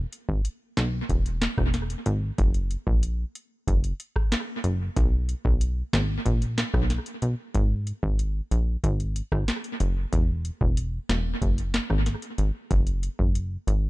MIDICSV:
0, 0, Header, 1, 3, 480
1, 0, Start_track
1, 0, Tempo, 645161
1, 1774, Time_signature, 4, 2, 24, 8
1, 10339, End_track
2, 0, Start_track
2, 0, Title_t, "Analog synth bass"
2, 0, Program_c, 0, 38
2, 213, Note_on_c, 0, 32, 85
2, 308, Note_off_c, 0, 32, 0
2, 574, Note_on_c, 0, 35, 95
2, 762, Note_off_c, 0, 35, 0
2, 814, Note_on_c, 0, 28, 102
2, 1097, Note_off_c, 0, 28, 0
2, 1173, Note_on_c, 0, 28, 90
2, 1456, Note_off_c, 0, 28, 0
2, 1534, Note_on_c, 0, 32, 99
2, 1722, Note_off_c, 0, 32, 0
2, 1774, Note_on_c, 0, 30, 115
2, 2056, Note_off_c, 0, 30, 0
2, 2134, Note_on_c, 0, 34, 87
2, 2416, Note_off_c, 0, 34, 0
2, 2734, Note_on_c, 0, 30, 106
2, 2923, Note_off_c, 0, 30, 0
2, 3453, Note_on_c, 0, 30, 95
2, 3642, Note_off_c, 0, 30, 0
2, 3694, Note_on_c, 0, 35, 109
2, 3977, Note_off_c, 0, 35, 0
2, 4054, Note_on_c, 0, 35, 93
2, 4337, Note_off_c, 0, 35, 0
2, 4414, Note_on_c, 0, 32, 93
2, 4602, Note_off_c, 0, 32, 0
2, 4654, Note_on_c, 0, 34, 105
2, 4937, Note_off_c, 0, 34, 0
2, 5013, Note_on_c, 0, 35, 99
2, 5202, Note_off_c, 0, 35, 0
2, 5374, Note_on_c, 0, 35, 92
2, 5468, Note_off_c, 0, 35, 0
2, 5614, Note_on_c, 0, 32, 117
2, 5897, Note_off_c, 0, 32, 0
2, 5974, Note_on_c, 0, 32, 92
2, 6257, Note_off_c, 0, 32, 0
2, 6334, Note_on_c, 0, 34, 90
2, 6523, Note_off_c, 0, 34, 0
2, 6575, Note_on_c, 0, 32, 103
2, 6857, Note_off_c, 0, 32, 0
2, 6933, Note_on_c, 0, 32, 97
2, 7028, Note_off_c, 0, 32, 0
2, 7294, Note_on_c, 0, 30, 87
2, 7482, Note_off_c, 0, 30, 0
2, 7534, Note_on_c, 0, 28, 116
2, 7817, Note_off_c, 0, 28, 0
2, 7894, Note_on_c, 0, 28, 94
2, 8177, Note_off_c, 0, 28, 0
2, 8254, Note_on_c, 0, 28, 94
2, 8442, Note_off_c, 0, 28, 0
2, 8494, Note_on_c, 0, 30, 101
2, 8777, Note_off_c, 0, 30, 0
2, 8853, Note_on_c, 0, 32, 91
2, 9042, Note_off_c, 0, 32, 0
2, 9214, Note_on_c, 0, 32, 92
2, 9308, Note_off_c, 0, 32, 0
2, 9454, Note_on_c, 0, 30, 112
2, 9737, Note_off_c, 0, 30, 0
2, 9814, Note_on_c, 0, 30, 91
2, 10097, Note_off_c, 0, 30, 0
2, 10173, Note_on_c, 0, 32, 96
2, 10339, Note_off_c, 0, 32, 0
2, 10339, End_track
3, 0, Start_track
3, 0, Title_t, "Drums"
3, 93, Note_on_c, 9, 42, 74
3, 168, Note_off_c, 9, 42, 0
3, 213, Note_on_c, 9, 36, 92
3, 288, Note_off_c, 9, 36, 0
3, 334, Note_on_c, 9, 42, 80
3, 408, Note_off_c, 9, 42, 0
3, 574, Note_on_c, 9, 38, 109
3, 574, Note_on_c, 9, 42, 70
3, 579, Note_on_c, 9, 39, 89
3, 649, Note_off_c, 9, 38, 0
3, 649, Note_off_c, 9, 42, 0
3, 653, Note_off_c, 9, 39, 0
3, 814, Note_on_c, 9, 36, 91
3, 815, Note_on_c, 9, 42, 73
3, 888, Note_off_c, 9, 36, 0
3, 889, Note_off_c, 9, 42, 0
3, 936, Note_on_c, 9, 42, 57
3, 1011, Note_off_c, 9, 42, 0
3, 1054, Note_on_c, 9, 38, 113
3, 1054, Note_on_c, 9, 42, 77
3, 1059, Note_on_c, 9, 39, 91
3, 1128, Note_off_c, 9, 42, 0
3, 1129, Note_off_c, 9, 38, 0
3, 1133, Note_off_c, 9, 39, 0
3, 1173, Note_on_c, 9, 36, 88
3, 1175, Note_on_c, 9, 37, 92
3, 1247, Note_off_c, 9, 36, 0
3, 1249, Note_off_c, 9, 37, 0
3, 1293, Note_on_c, 9, 42, 80
3, 1294, Note_on_c, 9, 38, 66
3, 1367, Note_off_c, 9, 42, 0
3, 1368, Note_off_c, 9, 38, 0
3, 1414, Note_on_c, 9, 42, 61
3, 1488, Note_off_c, 9, 42, 0
3, 1532, Note_on_c, 9, 42, 83
3, 1606, Note_off_c, 9, 42, 0
3, 1773, Note_on_c, 9, 42, 71
3, 1774, Note_on_c, 9, 36, 127
3, 1848, Note_off_c, 9, 36, 0
3, 1848, Note_off_c, 9, 42, 0
3, 1892, Note_on_c, 9, 42, 53
3, 1967, Note_off_c, 9, 42, 0
3, 2014, Note_on_c, 9, 42, 72
3, 2088, Note_off_c, 9, 42, 0
3, 2133, Note_on_c, 9, 36, 96
3, 2208, Note_off_c, 9, 36, 0
3, 2254, Note_on_c, 9, 42, 82
3, 2328, Note_off_c, 9, 42, 0
3, 2495, Note_on_c, 9, 42, 75
3, 2569, Note_off_c, 9, 42, 0
3, 2734, Note_on_c, 9, 36, 95
3, 2736, Note_on_c, 9, 42, 72
3, 2809, Note_off_c, 9, 36, 0
3, 2810, Note_off_c, 9, 42, 0
3, 2856, Note_on_c, 9, 42, 57
3, 2931, Note_off_c, 9, 42, 0
3, 2975, Note_on_c, 9, 42, 80
3, 3049, Note_off_c, 9, 42, 0
3, 3093, Note_on_c, 9, 36, 95
3, 3096, Note_on_c, 9, 37, 89
3, 3168, Note_off_c, 9, 36, 0
3, 3170, Note_off_c, 9, 37, 0
3, 3213, Note_on_c, 9, 42, 82
3, 3214, Note_on_c, 9, 38, 112
3, 3219, Note_on_c, 9, 39, 89
3, 3288, Note_off_c, 9, 42, 0
3, 3289, Note_off_c, 9, 38, 0
3, 3293, Note_off_c, 9, 39, 0
3, 3452, Note_on_c, 9, 42, 83
3, 3527, Note_off_c, 9, 42, 0
3, 3694, Note_on_c, 9, 36, 122
3, 3694, Note_on_c, 9, 42, 72
3, 3768, Note_off_c, 9, 36, 0
3, 3768, Note_off_c, 9, 42, 0
3, 3934, Note_on_c, 9, 42, 72
3, 4009, Note_off_c, 9, 42, 0
3, 4054, Note_on_c, 9, 36, 92
3, 4128, Note_off_c, 9, 36, 0
3, 4174, Note_on_c, 9, 42, 85
3, 4249, Note_off_c, 9, 42, 0
3, 4415, Note_on_c, 9, 38, 111
3, 4415, Note_on_c, 9, 42, 71
3, 4420, Note_on_c, 9, 39, 90
3, 4489, Note_off_c, 9, 38, 0
3, 4490, Note_off_c, 9, 42, 0
3, 4494, Note_off_c, 9, 39, 0
3, 4654, Note_on_c, 9, 36, 91
3, 4655, Note_on_c, 9, 42, 75
3, 4729, Note_off_c, 9, 36, 0
3, 4729, Note_off_c, 9, 42, 0
3, 4776, Note_on_c, 9, 42, 55
3, 4850, Note_off_c, 9, 42, 0
3, 4894, Note_on_c, 9, 38, 108
3, 4894, Note_on_c, 9, 42, 76
3, 4899, Note_on_c, 9, 39, 91
3, 4968, Note_off_c, 9, 42, 0
3, 4969, Note_off_c, 9, 38, 0
3, 4973, Note_off_c, 9, 39, 0
3, 5013, Note_on_c, 9, 36, 92
3, 5015, Note_on_c, 9, 37, 90
3, 5088, Note_off_c, 9, 36, 0
3, 5090, Note_off_c, 9, 37, 0
3, 5134, Note_on_c, 9, 42, 84
3, 5135, Note_on_c, 9, 38, 68
3, 5208, Note_off_c, 9, 42, 0
3, 5209, Note_off_c, 9, 38, 0
3, 5253, Note_on_c, 9, 42, 62
3, 5328, Note_off_c, 9, 42, 0
3, 5372, Note_on_c, 9, 42, 80
3, 5446, Note_off_c, 9, 42, 0
3, 5614, Note_on_c, 9, 36, 121
3, 5614, Note_on_c, 9, 42, 71
3, 5688, Note_off_c, 9, 36, 0
3, 5688, Note_off_c, 9, 42, 0
3, 5854, Note_on_c, 9, 42, 70
3, 5929, Note_off_c, 9, 42, 0
3, 5974, Note_on_c, 9, 36, 91
3, 6048, Note_off_c, 9, 36, 0
3, 6094, Note_on_c, 9, 42, 79
3, 6169, Note_off_c, 9, 42, 0
3, 6335, Note_on_c, 9, 42, 71
3, 6409, Note_off_c, 9, 42, 0
3, 6574, Note_on_c, 9, 36, 95
3, 6575, Note_on_c, 9, 42, 76
3, 6649, Note_off_c, 9, 36, 0
3, 6650, Note_off_c, 9, 42, 0
3, 6696, Note_on_c, 9, 42, 54
3, 6770, Note_off_c, 9, 42, 0
3, 6814, Note_on_c, 9, 42, 76
3, 6889, Note_off_c, 9, 42, 0
3, 6933, Note_on_c, 9, 36, 94
3, 6935, Note_on_c, 9, 37, 93
3, 7008, Note_off_c, 9, 36, 0
3, 7009, Note_off_c, 9, 37, 0
3, 7053, Note_on_c, 9, 42, 84
3, 7054, Note_on_c, 9, 38, 118
3, 7059, Note_on_c, 9, 39, 88
3, 7128, Note_off_c, 9, 42, 0
3, 7129, Note_off_c, 9, 38, 0
3, 7133, Note_off_c, 9, 39, 0
3, 7173, Note_on_c, 9, 42, 61
3, 7248, Note_off_c, 9, 42, 0
3, 7292, Note_on_c, 9, 42, 85
3, 7367, Note_off_c, 9, 42, 0
3, 7534, Note_on_c, 9, 36, 121
3, 7534, Note_on_c, 9, 42, 70
3, 7608, Note_off_c, 9, 36, 0
3, 7608, Note_off_c, 9, 42, 0
3, 7774, Note_on_c, 9, 42, 75
3, 7848, Note_off_c, 9, 42, 0
3, 7894, Note_on_c, 9, 36, 96
3, 7968, Note_off_c, 9, 36, 0
3, 8014, Note_on_c, 9, 42, 85
3, 8089, Note_off_c, 9, 42, 0
3, 8255, Note_on_c, 9, 38, 113
3, 8255, Note_on_c, 9, 42, 75
3, 8259, Note_on_c, 9, 39, 89
3, 8329, Note_off_c, 9, 38, 0
3, 8330, Note_off_c, 9, 42, 0
3, 8334, Note_off_c, 9, 39, 0
3, 8494, Note_on_c, 9, 36, 93
3, 8495, Note_on_c, 9, 42, 74
3, 8569, Note_off_c, 9, 36, 0
3, 8570, Note_off_c, 9, 42, 0
3, 8616, Note_on_c, 9, 42, 58
3, 8690, Note_off_c, 9, 42, 0
3, 8734, Note_on_c, 9, 42, 82
3, 8735, Note_on_c, 9, 38, 111
3, 8740, Note_on_c, 9, 39, 89
3, 8809, Note_off_c, 9, 38, 0
3, 8809, Note_off_c, 9, 42, 0
3, 8814, Note_off_c, 9, 39, 0
3, 8853, Note_on_c, 9, 36, 94
3, 8855, Note_on_c, 9, 37, 94
3, 8927, Note_off_c, 9, 36, 0
3, 8930, Note_off_c, 9, 37, 0
3, 8973, Note_on_c, 9, 42, 83
3, 8974, Note_on_c, 9, 38, 65
3, 9048, Note_off_c, 9, 42, 0
3, 9049, Note_off_c, 9, 38, 0
3, 9094, Note_on_c, 9, 42, 61
3, 9168, Note_off_c, 9, 42, 0
3, 9212, Note_on_c, 9, 42, 80
3, 9287, Note_off_c, 9, 42, 0
3, 9454, Note_on_c, 9, 36, 120
3, 9454, Note_on_c, 9, 42, 70
3, 9528, Note_off_c, 9, 36, 0
3, 9528, Note_off_c, 9, 42, 0
3, 9573, Note_on_c, 9, 42, 52
3, 9647, Note_off_c, 9, 42, 0
3, 9695, Note_on_c, 9, 42, 71
3, 9769, Note_off_c, 9, 42, 0
3, 9814, Note_on_c, 9, 36, 97
3, 9888, Note_off_c, 9, 36, 0
3, 9935, Note_on_c, 9, 42, 81
3, 10009, Note_off_c, 9, 42, 0
3, 10176, Note_on_c, 9, 42, 75
3, 10250, Note_off_c, 9, 42, 0
3, 10339, End_track
0, 0, End_of_file